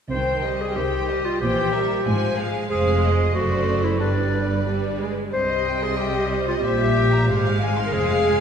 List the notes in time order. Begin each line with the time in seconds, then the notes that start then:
0.10 C2 C3 D#3 C5 G5
0.43 G3 G4 D#5
0.61 G#4
0.75 C2 C3 D#3 G4 C5 G5
1.08 G3 G4 D#5
1.25 F4
1.40 A#1 A#2 E3 G4 C5 G5
1.71 G3 A#4 E5
2.05 G#1 G#2 F3 C5 G#5
2.36 G#3 G#4 F5
2.69 F1 F2 G#3 G#4 C5 F5
3.03 D#5
3.34 F#1 F#2 A3 F#4 C5 D5
3.84 E4
4.00 G1 G2 G3 D4 B4 D5
4.66 G3
5.00 G#3
5.33 C2 C3 G3 C5 D#5
5.49 D#5
5.67 G5
5.82 G#4 C6
5.97 G4 G5
6.14 D#5
6.30 C5
6.47 F4 D#5
6.63 A#1 A#2 G4 C5 E5
6.81 E5
6.97 G5
7.12 A#5
7.28 G#1 G#2 G#3 C5 F5
7.45 F5
7.62 G#5
7.76 C6
7.86 A#4
7.92 F1 F2 G#4 C5
8.11 F5
8.26 G#5